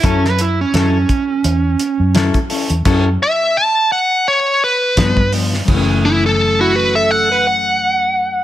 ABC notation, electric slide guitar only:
X:1
M:4/4
L:1/16
Q:"Swing 16ths" 1/4=85
K:F#m
V:1 name="Electric slide guitar"
C B E C C8 z4 | z16 | z4 z E F A2 B f6 |]